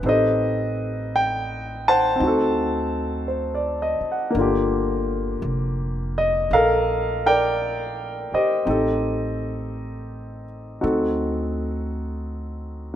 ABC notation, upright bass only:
X:1
M:4/4
L:1/8
Q:"Swing" 1/4=56
K:Gm
V:1 name="Upright bass" clef=bass
A,,,4 D,,3 z | G,,,2 F,,,2 B,,,3 z | A,,,4 D,,4 |]